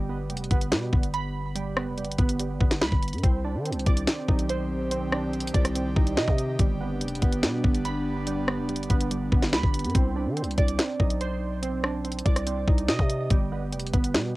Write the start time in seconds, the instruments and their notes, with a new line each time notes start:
Already playing: 808-style bass G1, synth keys G3
0.09 synth keys B3
0.30 808-style bass F1, synth keys G3, closed hi-hat
0.37 closed hi-hat
0.44 closed hi-hat
0.51 808-style bass G1, synth keys B3, kick, closed hi-hat
0.61 closed hi-hat
0.72 808-style bass B2, synth keys G3, snare, closed hi-hat
0.93 808-style bass G1, synth keys B3, kick
1.03 closed hi-hat
1.14 synth keys B5, closed hi-hat
1.55 synth keys G3, closed hi-hat
1.77 synth keys B3, cross-stick
1.87 808-style bass F1
1.98 synth keys G3, closed hi-hat
2.03 808-style bass G1, closed hi-hat
2.12 closed hi-hat
2.18 808-style bass G1, synth keys B3, kick, closed hi-hat
2.29 closed hi-hat
2.40 synth keys G3, closed hi-hat
2.61 808-style bass G1, synth keys B3, kick
2.71 snare, closed hi-hat
2.81 808-style bass D2, synth keys B5, snare
2.92 808-style bass G1, kick
3.03 closed hi-hat
3.08 closed hi-hat
3.13 808-style bass G2, closed hi-hat
3.18 closed hi-hat
3.23 808-style bass C2, analog synth pad D#3 C4 G4, synth keys C4, kick, closed hi-hat
3.44 synth keys D4
3.55 808-style bass D#3
3.65 synth keys C4, closed hi-hat
3.71 808-style bass C2, closed hi-hat
3.79 closed hi-hat
3.86 808-style bass C2, synth keys D5, kick, closed hi-hat
3.97 closed hi-hat
4.07 synth keys C4, snare, closed hi-hat
4.28 808-style bass B1, synth keys D#4, kick
4.39 closed hi-hat
4.49 synth keys C5, closed hi-hat
4.91 synth keys C4, closed hi-hat
5.12 synth keys D4, cross-stick
5.33 synth keys C4, closed hi-hat
5.40 closed hi-hat
5.47 closed hi-hat
5.54 808-style bass C2, synth keys D5, kick, closed hi-hat
5.65 cross-stick, closed hi-hat
5.75 synth keys C4, closed hi-hat
5.96 808-style bass C2, synth keys D#4, kick
6.07 closed hi-hat
6.17 808-style bass C3, synth keys D#5, snare
6.28 808-style bass C3, kick
6.38 closed hi-hat
6.59 808-style bass G1, synth keys G3, analog synth pad B3 D4, kick, closed hi-hat
6.81 synth keys B3
7.01 808-style bass F1, synth keys G3, closed hi-hat
7.08 closed hi-hat
7.15 closed hi-hat
7.22 808-style bass G1, synth keys B3, kick, closed hi-hat
7.33 closed hi-hat
7.43 808-style bass B2, synth keys G3, snare, closed hi-hat
7.64 808-style bass G1, synth keys B3, kick
7.75 closed hi-hat
7.85 synth keys B5, closed hi-hat
8.27 synth keys G3, closed hi-hat
8.48 synth keys B3, cross-stick
8.59 808-style bass F1
8.69 synth keys G3, closed hi-hat
8.74 808-style bass G1, closed hi-hat
8.83 closed hi-hat
8.90 808-style bass G1, synth keys B3, kick, closed hi-hat
9.01 closed hi-hat
9.11 synth keys G3, closed hi-hat
9.32 808-style bass G1, synth keys B3, kick
9.42 snare, closed hi-hat
9.53 808-style bass D2, synth keys B5, snare
9.63 808-style bass G1, kick
9.74 closed hi-hat
9.79 closed hi-hat
9.84 808-style bass G2, closed hi-hat
9.90 closed hi-hat
9.95 808-style bass C2, synth keys C4, kick, closed hi-hat
10.16 synth keys D4
10.26 808-style bass D#3
10.37 synth keys C4, closed hi-hat
10.42 808-style bass C2, closed hi-hat
10.51 closed hi-hat
10.58 808-style bass C2, synth keys D5, kick, closed hi-hat
10.68 closed hi-hat
10.79 synth keys C4, snare, closed hi-hat
11.00 808-style bass B1, synth keys D#4, kick
11.10 closed hi-hat
11.21 synth keys C5, closed hi-hat
11.62 synth keys C4, closed hi-hat
11.84 synth keys D4, cross-stick
12.05 synth keys C4, closed hi-hat
12.12 closed hi-hat
12.19 closed hi-hat
12.25 808-style bass C2, synth keys D5, kick, closed hi-hat
12.36 cross-stick, closed hi-hat
12.47 synth keys C4, closed hi-hat
12.68 808-style bass C2, synth keys D#4, kick
12.78 closed hi-hat
12.88 808-style bass C3, synth keys D#5, snare
12.99 808-style bass C3, kick
13.10 closed hi-hat
13.30 808-style bass G1, synth keys G3, kick, closed hi-hat
13.52 synth keys B3
13.72 808-style bass F1, synth keys G3, closed hi-hat
13.80 closed hi-hat
13.87 closed hi-hat
13.93 808-style bass G1, synth keys B3, kick, closed hi-hat
14.04 closed hi-hat
14.14 808-style bass B2, synth keys G3, snare, closed hi-hat